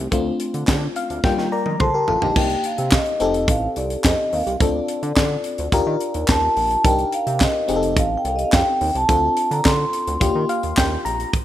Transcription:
0.11 analog synth bass D2, fm electric piano A3 C4 D4 F4, kick, closed hi-hat
0.40 closed hi-hat
0.54 analog synth bass D3, closed hi-hat
0.67 analog synth bass D3, kick, snare, clap, closed hi-hat
0.96 fm electric piano F5, closed hi-hat
1.10 analog synth bass D2, closed hi-hat
1.24 analog synth bass D#2, fm electric piano G3 A#3 D4 F4 G5, kick, snare
1.38 analog synth bass D#3, snare
1.52 fm electric piano A#4 D5 A#5
1.66 analog synth bass D#3, high tom
1.80 analog synth bass A#1, fm electric piano A4 C5 C6, vibraphone A5, kick, mid tom
1.94 fm electric piano G4 A#4
2.08 analog synth bass A1, fm electric piano F4 A4, floor tom
2.22 analog synth bass A#1, fm electric piano D#4 G4, floor tom
2.36 analog synth bass C2, fm electric piano A#3 D4 D#4 G4, vibraphone G5, kick, crash
2.50 closed hi-hat
2.64 vibraphone F5, closed hi-hat
2.78 analog synth bass C3, closed hi-hat
2.91 vibraphone D#5, kick, snare, clap, closed hi-hat
3.06 closed hi-hat
3.20 analog synth bass F1, fm electric piano C4 D#4 G4 A4, closed hi-hat
3.34 closed hi-hat
3.48 analog synth bass A1, vibraphone F5, kick, closed hi-hat
3.76 analog synth bass C2, vibraphone D5, closed hi-hat
3.90 closed hi-hat
4.04 analog synth bass F2, vibraphone D#5, kick, snare, clap, closed hi-hat
4.33 analog synth bass D#2, vibraphone F5, open hi-hat
4.47 analog synth bass C2, closed hi-hat
4.60 analog synth bass D2, fm electric piano C4 D4 F4 A4, vibraphone D5, kick, closed hi-hat
4.88 closed hi-hat
5.03 analog synth bass D3, closed hi-hat
5.16 analog synth bass D3, kick, snare, clap, closed hi-hat
5.44 closed hi-hat
5.58 analog synth bass D2, closed hi-hat
5.72 analog synth bass D#2, fm electric piano D4 F4 G4 A#4, kick, closed hi-hat
5.87 analog synth bass D#3
6.00 closed hi-hat
6.14 analog synth bass D#2, closed hi-hat
6.28 analog synth bass D#2, vibraphone A5, kick, snare, clap, closed hi-hat
6.57 analog synth bass A#1, open hi-hat
6.71 closed hi-hat
6.84 analog synth bass C2, fm electric piano D4 D#4 G4 A#4, vibraphone G5, kick, closed hi-hat
6.99 closed hi-hat
7.12 vibraphone F5, closed hi-hat
7.27 analog synth bass C3, closed hi-hat
7.40 vibraphone D#5, kick, snare, clap, closed hi-hat
7.68 analog synth bass F1, fm electric piano C4 D#4 G4 G#4, closed hi-hat
7.76 fm electric piano A4
7.83 closed hi-hat
7.97 analog synth bass A1, vibraphone F5, kick, closed hi-hat
8.18 vibraphone G5
8.25 analog synth bass C2, vibraphone F5, closed hi-hat
8.36 vibraphone D#5, closed hi-hat
8.44 vibraphone F5
8.52 analog synth bass F2, vibraphone G5, kick, snare, clap, closed hi-hat
8.81 analog synth bass D#2, open hi-hat
8.95 analog synth bass C2, vibraphone A5, closed hi-hat
9.08 analog synth bass D2, fm electric piano C4 D4 F4 A4, kick, closed hi-hat
9.37 closed hi-hat
9.51 analog synth bass D3, vibraphone A#5, closed hi-hat
9.65 analog synth bass D3, vibraphone C6, kick, snare, clap, closed hi-hat
9.93 closed hi-hat
10.07 analog synth bass D2, closed hi-hat
10.20 analog synth bass D#2, fm electric piano A#3 D4 F4 G4, kick, closed hi-hat
10.35 analog synth bass D#3
10.49 fm electric piano F5, closed hi-hat
10.63 analog synth bass D#2, closed hi-hat
10.77 analog synth bass D#2, fm electric piano G5, kick, snare, clap, closed hi-hat
11.05 analog synth bass A#1, fm electric piano A#5, closed hi-hat
11.20 closed hi-hat
11.33 kick, closed hi-hat

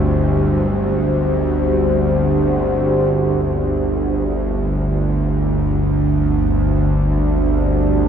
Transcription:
Already playing: synth drone G1 D2, singing bowl G3, ambient pad D4 F#4 G4 C5
3.15 synth drone G1 D2, ambient pad D4
3.97 ambient pad C5
4.09 ambient pad F#4
5.96 ambient pad G4

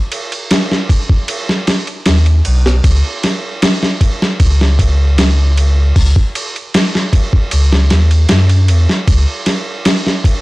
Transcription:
0.12 ride
0.32 ride
0.51 snare, ride
0.72 snare
0.89 kick, ride
1.10 kick
1.28 ride
1.49 snare
1.67 snare, ride
1.87 ride
2.06 sub bass D#2, snare, ride
2.26 ride
2.45 sub bass B1, ride
2.66 snare
2.84 sub bass C#2, kick, ride
3.23 snare, ride
3.62 snare, ride
3.83 snare
4.01 kick, ride
4.22 snare
4.40 sub bass C#2, kick, ride
4.61 snare
4.79 kick, ride
5.18 snare, ride
5.57 ride
5.96 sub bass C#2, kick, open hi-hat
6.16 kick
6.35 ride
6.56 ride
6.74 snare, ride
6.95 snare
7.13 kick, ride
7.33 kick
7.51 sub bass C#2, ride
7.72 snare
7.90 sub bass D#2, snare, ride
8.11 ride
8.29 sub bass F#2, snare, ride
8.49 ride
8.68 sub bass E2, ride
8.89 snare
9.07 sub bass C#2, kick, ride
9.46 snare, ride
9.85 snare, ride
10.07 snare
10.24 kick, ride

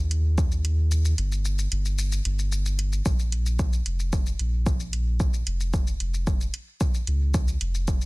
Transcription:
Already playing: sub bass D#2
0.11 closed hi-hat
0.38 kick, shaker
0.52 shaker
0.65 closed hi-hat
0.91 shaker
1.05 shaker
1.18 sub bass G1, closed hi-hat
1.32 shaker
1.45 shaker
1.59 shaker
1.72 sub bass G1, closed hi-hat
1.85 shaker
1.98 shaker
2.12 shaker
2.25 sub bass G1, closed hi-hat
2.39 shaker
2.52 shaker
2.66 shaker
2.79 closed hi-hat
2.92 shaker
3.06 sub bass A#1, kick, shaker
3.19 shaker
3.32 closed hi-hat
3.46 shaker
3.59 kick, shaker
3.73 shaker
3.86 sub bass F1, closed hi-hat
3.99 shaker
4.13 kick, shaker
4.26 shaker
4.39 sub bass A#1, closed hi-hat
4.66 kick, shaker
4.80 shaker
4.93 closed hi-hat
5.20 kick, shaker
5.34 shaker
5.47 sub bass F1, closed hi-hat
5.60 shaker
5.73 kick, shaker
5.87 shaker
6.00 sub bass F1, closed hi-hat
6.14 shaker
6.27 kick, shaker
6.41 shaker
6.54 closed hi-hat
6.81 kick, shaker
6.94 shaker
7.07 sub bass C#2, closed hi-hat
7.34 kick, shaker
7.48 shaker
7.61 sub bass F1, closed hi-hat
7.75 shaker
7.88 kick, shaker
8.01 shaker

